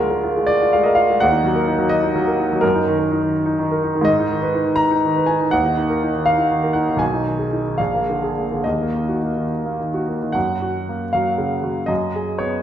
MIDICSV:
0, 0, Header, 1, 2, 480
1, 0, Start_track
1, 0, Key_signature, -6, "minor"
1, 0, Tempo, 496689
1, 1188, Time_signature, 6, 3, 24, 8
1, 1188, Tempo, 473186
1, 4548, Tempo, 493016
1, 6948, Tempo, 528634
1, 7908, Tempo, 571429
1, 9828, Tempo, 513699
1, 11953, End_track
2, 0, Start_track
2, 0, Title_t, "Grand piano"
2, 0, Program_c, 0, 0
2, 0, Control_c, 0, 64, 127
2, 0, Note_on_c, 0, 38, 62
2, 0, Note_on_c, 0, 56, 46
2, 0, Note_on_c, 0, 65, 50
2, 0, Note_on_c, 0, 70, 83
2, 104, Note_off_c, 0, 70, 0
2, 104, Note_on_c, 0, 70, 49
2, 170, Note_off_c, 0, 56, 0
2, 227, Note_off_c, 0, 65, 0
2, 227, Note_on_c, 0, 65, 47
2, 301, Note_off_c, 0, 70, 0
2, 349, Note_on_c, 0, 56, 44
2, 425, Note_off_c, 0, 65, 0
2, 450, Note_on_c, 0, 74, 87
2, 597, Note_on_c, 0, 65, 47
2, 702, Note_on_c, 0, 77, 69
2, 707, Note_off_c, 0, 74, 0
2, 711, Note_off_c, 0, 56, 0
2, 726, Note_on_c, 0, 56, 51
2, 792, Note_off_c, 0, 65, 0
2, 806, Note_on_c, 0, 75, 65
2, 828, Note_on_c, 0, 70, 52
2, 831, Note_off_c, 0, 77, 0
2, 914, Note_off_c, 0, 56, 0
2, 919, Note_on_c, 0, 77, 79
2, 934, Note_on_c, 0, 65, 47
2, 940, Note_off_c, 0, 75, 0
2, 1021, Note_off_c, 0, 70, 0
2, 1066, Note_on_c, 0, 56, 46
2, 1130, Note_off_c, 0, 65, 0
2, 1141, Note_off_c, 0, 38, 0
2, 1163, Note_on_c, 0, 78, 93
2, 1168, Note_off_c, 0, 77, 0
2, 1184, Note_off_c, 0, 56, 0
2, 1185, Note_on_c, 0, 39, 62
2, 1204, Control_c, 0, 64, 0
2, 1281, Note_on_c, 0, 63, 50
2, 1389, Control_c, 0, 64, 127
2, 1403, Note_on_c, 0, 54, 49
2, 1482, Note_off_c, 0, 63, 0
2, 1517, Note_on_c, 0, 70, 50
2, 1602, Note_off_c, 0, 54, 0
2, 1641, Note_on_c, 0, 63, 53
2, 1718, Note_off_c, 0, 70, 0
2, 1752, Note_on_c, 0, 54, 46
2, 1840, Note_off_c, 0, 63, 0
2, 1862, Note_on_c, 0, 75, 89
2, 1885, Note_off_c, 0, 78, 0
2, 2000, Note_on_c, 0, 63, 51
2, 2112, Note_off_c, 0, 54, 0
2, 2127, Note_on_c, 0, 54, 53
2, 2205, Note_off_c, 0, 63, 0
2, 2247, Note_on_c, 0, 70, 51
2, 2329, Note_off_c, 0, 54, 0
2, 2371, Note_on_c, 0, 63, 50
2, 2448, Note_off_c, 0, 70, 0
2, 2506, Note_on_c, 0, 54, 51
2, 2570, Note_off_c, 0, 63, 0
2, 2582, Note_off_c, 0, 39, 0
2, 2588, Note_on_c, 0, 70, 76
2, 2606, Note_off_c, 0, 75, 0
2, 2612, Note_on_c, 0, 42, 62
2, 2625, Note_off_c, 0, 54, 0
2, 2640, Control_c, 0, 64, 0
2, 2731, Note_on_c, 0, 63, 49
2, 2776, Control_c, 0, 64, 127
2, 2854, Note_on_c, 0, 51, 52
2, 2929, Note_off_c, 0, 63, 0
2, 2959, Note_off_c, 0, 70, 0
2, 2974, Note_on_c, 0, 70, 49
2, 3051, Note_off_c, 0, 51, 0
2, 3101, Note_on_c, 0, 63, 49
2, 3171, Note_off_c, 0, 70, 0
2, 3211, Note_on_c, 0, 51, 46
2, 3295, Note_off_c, 0, 63, 0
2, 3449, Note_on_c, 0, 63, 52
2, 3565, Note_off_c, 0, 51, 0
2, 3580, Note_on_c, 0, 51, 52
2, 3649, Note_off_c, 0, 63, 0
2, 3710, Note_on_c, 0, 70, 49
2, 3774, Note_off_c, 0, 51, 0
2, 3832, Note_on_c, 0, 63, 46
2, 3898, Note_off_c, 0, 70, 0
2, 3950, Note_on_c, 0, 51, 53
2, 4013, Note_on_c, 0, 44, 63
2, 4017, Note_off_c, 0, 42, 0
2, 4020, Note_off_c, 0, 63, 0
2, 4046, Note_on_c, 0, 75, 90
2, 4067, Note_off_c, 0, 51, 0
2, 4080, Control_c, 0, 64, 0
2, 4199, Note_on_c, 0, 63, 52
2, 4238, Control_c, 0, 64, 127
2, 4311, Note_on_c, 0, 51, 53
2, 4385, Note_off_c, 0, 63, 0
2, 4424, Note_on_c, 0, 71, 52
2, 4501, Note_off_c, 0, 51, 0
2, 4552, Note_on_c, 0, 63, 53
2, 4615, Note_off_c, 0, 71, 0
2, 4654, Note_on_c, 0, 51, 44
2, 4735, Note_off_c, 0, 63, 0
2, 4757, Note_on_c, 0, 82, 95
2, 4771, Note_off_c, 0, 75, 0
2, 4906, Note_on_c, 0, 63, 53
2, 5026, Note_off_c, 0, 51, 0
2, 5040, Note_on_c, 0, 51, 48
2, 5094, Note_off_c, 0, 63, 0
2, 5153, Note_on_c, 0, 71, 50
2, 5222, Note_off_c, 0, 51, 0
2, 5247, Note_off_c, 0, 82, 0
2, 5252, Note_on_c, 0, 80, 68
2, 5266, Note_on_c, 0, 63, 46
2, 5337, Note_off_c, 0, 71, 0
2, 5392, Note_on_c, 0, 51, 49
2, 5433, Note_off_c, 0, 44, 0
2, 5453, Note_off_c, 0, 63, 0
2, 5493, Note_off_c, 0, 80, 0
2, 5493, Note_on_c, 0, 78, 86
2, 5504, Note_off_c, 0, 51, 0
2, 5510, Note_on_c, 0, 39, 59
2, 5514, Control_c, 0, 64, 0
2, 5630, Note_on_c, 0, 63, 47
2, 5689, Control_c, 0, 64, 127
2, 5747, Note_on_c, 0, 51, 49
2, 5815, Note_off_c, 0, 63, 0
2, 5868, Note_on_c, 0, 70, 48
2, 5934, Note_off_c, 0, 51, 0
2, 6001, Note_on_c, 0, 63, 48
2, 6056, Note_off_c, 0, 70, 0
2, 6119, Note_on_c, 0, 51, 40
2, 6182, Note_off_c, 0, 63, 0
2, 6216, Note_off_c, 0, 78, 0
2, 6217, Note_on_c, 0, 77, 90
2, 6340, Note_on_c, 0, 63, 45
2, 6453, Note_off_c, 0, 51, 0
2, 6467, Note_on_c, 0, 51, 46
2, 6531, Note_off_c, 0, 63, 0
2, 6584, Note_on_c, 0, 70, 46
2, 6657, Note_off_c, 0, 51, 0
2, 6681, Note_on_c, 0, 78, 60
2, 6700, Note_off_c, 0, 77, 0
2, 6701, Note_on_c, 0, 63, 41
2, 6777, Note_off_c, 0, 70, 0
2, 6838, Note_on_c, 0, 51, 46
2, 6897, Note_off_c, 0, 63, 0
2, 6906, Note_on_c, 0, 35, 56
2, 6914, Note_off_c, 0, 39, 0
2, 6931, Note_on_c, 0, 80, 78
2, 6936, Note_off_c, 0, 78, 0
2, 6953, Note_off_c, 0, 51, 0
2, 6960, Control_c, 0, 64, 0
2, 7065, Note_on_c, 0, 63, 44
2, 7137, Control_c, 0, 64, 127
2, 7186, Note_on_c, 0, 51, 43
2, 7246, Note_off_c, 0, 63, 0
2, 7296, Note_on_c, 0, 68, 39
2, 7367, Note_off_c, 0, 51, 0
2, 7421, Note_on_c, 0, 63, 42
2, 7485, Note_off_c, 0, 68, 0
2, 7547, Note_on_c, 0, 51, 34
2, 7610, Note_off_c, 0, 63, 0
2, 7614, Note_off_c, 0, 35, 0
2, 7647, Note_on_c, 0, 77, 64
2, 7648, Note_off_c, 0, 80, 0
2, 7661, Note_on_c, 0, 34, 51
2, 7663, Note_off_c, 0, 51, 0
2, 7670, Control_c, 0, 64, 0
2, 7799, Note_on_c, 0, 58, 42
2, 7858, Control_c, 0, 64, 127
2, 7935, Note_on_c, 0, 50, 36
2, 7986, Note_off_c, 0, 58, 0
2, 8050, Note_on_c, 0, 68, 38
2, 8110, Note_off_c, 0, 50, 0
2, 8177, Note_on_c, 0, 58, 34
2, 8229, Note_off_c, 0, 68, 0
2, 8292, Note_on_c, 0, 50, 38
2, 8355, Note_off_c, 0, 58, 0
2, 8370, Note_off_c, 0, 34, 0
2, 8385, Note_off_c, 0, 77, 0
2, 8391, Note_on_c, 0, 75, 58
2, 8402, Note_off_c, 0, 50, 0
2, 8404, Control_c, 0, 64, 0
2, 8407, Note_on_c, 0, 39, 44
2, 8539, Note_on_c, 0, 58, 37
2, 8572, Control_c, 0, 64, 127
2, 8659, Note_on_c, 0, 51, 36
2, 8721, Note_off_c, 0, 58, 0
2, 8767, Note_on_c, 0, 66, 35
2, 8839, Note_off_c, 0, 51, 0
2, 8891, Note_on_c, 0, 58, 35
2, 8950, Note_off_c, 0, 66, 0
2, 9007, Note_on_c, 0, 51, 31
2, 9070, Note_off_c, 0, 58, 0
2, 9110, Note_off_c, 0, 75, 0
2, 9244, Note_on_c, 0, 58, 34
2, 9348, Note_off_c, 0, 51, 0
2, 9361, Note_on_c, 0, 51, 34
2, 9430, Note_off_c, 0, 58, 0
2, 9484, Note_on_c, 0, 66, 36
2, 9550, Note_off_c, 0, 51, 0
2, 9605, Note_on_c, 0, 58, 31
2, 9672, Note_off_c, 0, 66, 0
2, 9724, Note_on_c, 0, 51, 33
2, 9788, Note_off_c, 0, 58, 0
2, 9803, Note_off_c, 0, 39, 0
2, 9807, Note_on_c, 0, 78, 73
2, 9828, Note_on_c, 0, 42, 49
2, 9833, Note_off_c, 0, 51, 0
2, 9846, Control_c, 0, 64, 0
2, 9997, Control_c, 0, 64, 127
2, 10079, Note_on_c, 0, 66, 40
2, 10332, Note_on_c, 0, 58, 38
2, 10474, Note_off_c, 0, 66, 0
2, 10554, Note_on_c, 0, 77, 70
2, 10557, Note_off_c, 0, 78, 0
2, 10571, Note_on_c, 0, 54, 41
2, 10711, Note_off_c, 0, 58, 0
2, 10791, Note_on_c, 0, 49, 41
2, 10942, Note_off_c, 0, 54, 0
2, 11031, Note_on_c, 0, 54, 36
2, 11172, Note_off_c, 0, 49, 0
2, 11235, Note_off_c, 0, 42, 0
2, 11241, Note_on_c, 0, 75, 72
2, 11260, Note_on_c, 0, 42, 51
2, 11265, Note_off_c, 0, 77, 0
2, 11270, Note_off_c, 0, 54, 0
2, 11290, Control_c, 0, 64, 0
2, 11445, Control_c, 0, 64, 127
2, 11514, Note_on_c, 0, 68, 44
2, 11730, Note_on_c, 0, 73, 67
2, 11732, Note_off_c, 0, 75, 0
2, 11746, Note_on_c, 0, 59, 43
2, 11892, Note_off_c, 0, 68, 0
2, 11953, Note_off_c, 0, 42, 0
2, 11953, Note_off_c, 0, 59, 0
2, 11953, Note_off_c, 0, 73, 0
2, 11953, End_track
0, 0, End_of_file